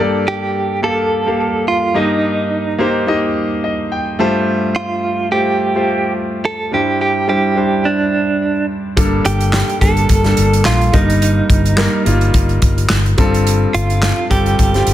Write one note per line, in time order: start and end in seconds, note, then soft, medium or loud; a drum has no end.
0.00 0.79 G2 medium
0.00 0.71 A#3 medium
0.00 0.71 G4 medium
0.00 0.71 A4 medium
0.00 0.71 D5 medium
0.28 0.80 G4 medium
0.82 1.19 A#3 medium
0.82 1.19 G4 medium
0.82 1.19 A4 medium
0.82 1.68 A4 medium
0.82 1.20 F5 medium
1.26 1.93 A#3 medium
1.26 1.93 G4 medium
1.26 1.96 A4 medium
1.26 1.96 F5 medium
1.68 1.97 F4 medium
1.94 2.75 G2 medium
1.94 2.67 A#3 medium
1.94 2.67 D#4 medium
1.94 3.04 D#4 medium
1.94 2.67 G4 medium
1.94 2.68 D#5 medium
2.79 3.03 A#3 medium
2.79 3.03 D#4 medium
2.79 3.04 G4 medium
2.79 3.04 C5 medium
3.07 4.03 A#3 medium
3.07 4.03 D#4 medium
3.07 4.03 G4 medium
3.07 3.62 D#5 medium
3.64 3.90 D#5 medium
3.92 4.18 G5 medium
4.19 5.00 G2 medium
4.19 5.15 A3 medium
4.19 5.15 F4 medium
4.19 5.15 G4 medium
4.19 5.15 C5 medium
4.19 4.46 A5 medium
4.76 5.28 F4 medium
5.31 5.68 A3 medium
5.31 5.68 F4 medium
5.31 6.12 G4 medium
5.31 5.68 G4 medium
5.31 5.69 C5 medium
5.75 6.58 A3 medium
5.75 6.58 F4 medium
5.75 6.58 G4 medium
5.75 6.58 C5 medium
6.45 6.74 A4 medium
6.71 7.53 G2 medium
6.71 7.20 G3 medium
6.71 7.20 D4 medium
6.71 7.21 E4 medium
6.71 7.00 G4 medium
6.71 7.21 C5 medium
7.01 7.28 G4 medium
7.28 7.52 G3 medium
7.28 7.53 D4 medium
7.28 7.53 E4 medium
7.28 7.87 G4 medium
7.28 7.53 C5 medium
7.56 8.52 G3 medium
7.56 8.52 D4 medium
7.56 8.52 E4 medium
7.56 8.52 C5 medium
7.85 8.65 D4 medium
8.97 9.20 G1 medium
8.97 9.77 G2 medium
8.97 9.69 G3 medium
8.97 9.69 A#3 medium
8.97 9.70 D4 medium
8.97 9.70 A4 medium
8.97 kick medium
8.97 closed hi-hat medium
9.25 9.61 G1 medium
9.25 9.78 G4 medium
9.25 closed hi-hat medium
9.41 closed hi-hat soft
9.53 snare medium
9.53 clap medium
9.69 closed hi-hat soft
9.81 10.04 G1 medium
9.81 10.17 G3 medium
9.81 10.17 A#3 medium
9.81 10.18 D4 medium
9.81 10.66 A4 medium
9.81 10.18 A4 medium
9.81 kick medium
9.81 closed hi-hat medium
9.97 closed hi-hat soft
10.09 10.32 G1 medium
10.09 kick medium
10.09 closed hi-hat medium
10.24 10.92 G3 medium
10.24 10.92 A#3 medium
10.24 10.94 D4 medium
10.24 10.94 A4 medium
10.24 snare soft
10.24 closed hi-hat soft
10.37 10.61 G1 medium
10.37 closed hi-hat medium
10.53 closed hi-hat soft
10.65 10.89 A#1 medium
10.65 10.95 F4 medium
10.65 snare medium
10.65 clap medium
10.81 closed hi-hat soft
10.93 11.40 G1 medium
10.93 11.74 G2 medium
10.93 11.66 G3 medium
10.93 11.66 A#3 medium
10.93 12.02 D#4 medium
10.93 11.66 D#4 medium
10.93 11.66 A#4 medium
10.93 kick medium
10.93 closed hi-hat medium
11.10 closed hi-hat soft
11.22 closed hi-hat medium
11.50 11.86 G1 medium
11.50 kick medium
11.50 closed hi-hat medium
11.66 closed hi-hat soft
11.77 12.01 G3 medium
11.77 12.02 A#3 medium
11.77 12.02 D#4 medium
11.77 12.02 A#4 medium
11.77 snare medium
11.77 clap medium
12.05 12.29 G1 medium
12.05 13.01 G3 medium
12.05 13.01 A#3 medium
12.05 13.01 D#4 medium
12.05 13.01 F4 medium
12.05 closed hi-hat medium
12.21 closed hi-hat soft
12.34 12.57 G1 medium
12.34 kick medium
12.34 closed hi-hat medium
12.49 closed hi-hat soft
12.62 12.85 G1 medium
12.62 kick medium
12.62 closed hi-hat medium
12.78 closed hi-hat soft
12.90 13.13 G1 medium
12.90 snare loud
12.90 clap medium
13.06 closed hi-hat soft
13.18 13.64 G1 medium
13.18 13.99 G2 medium
13.18 14.13 G3 medium
13.18 14.14 C4 medium
13.18 14.14 F4 medium
13.18 14.14 A4 medium
13.18 kick medium
13.18 closed hi-hat medium
13.34 closed hi-hat soft
13.47 closed hi-hat medium
13.74 14.10 G1 medium
13.74 14.27 F4 medium
13.74 closed hi-hat medium
13.90 closed hi-hat soft
14.03 snare loud
14.03 clap medium
14.30 14.54 G1 medium
14.30 14.67 G3 medium
14.30 14.67 C4 medium
14.30 14.67 F4 medium
14.30 14.94 G4 medium
14.30 14.67 A4 medium
14.30 kick medium
14.30 closed hi-hat medium
14.46 closed hi-hat soft
14.59 14.82 G1 medium
14.59 kick medium
14.59 closed hi-hat medium
14.74 14.94 G3 medium
14.74 14.94 C4 medium
14.74 14.94 F4 medium
14.74 14.94 G4 medium
14.74 snare soft
14.74 closed hi-hat soft
14.87 14.94 G1 medium
14.87 closed hi-hat medium